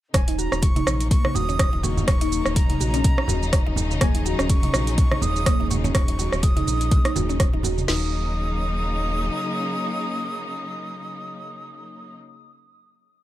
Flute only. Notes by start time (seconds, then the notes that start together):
0.14 G#5
0.39 A#5
0.62 C#6
1.11 C#6
1.35 D#6
1.84 C#6
2.08 C#6
2.56 A#5
4.01 G#5
4.25 A#5
4.49 C#6
4.98 C#6
5.22 D#6
5.70 C#6
5.95 C#6
6.43 D#6
7.88 D#6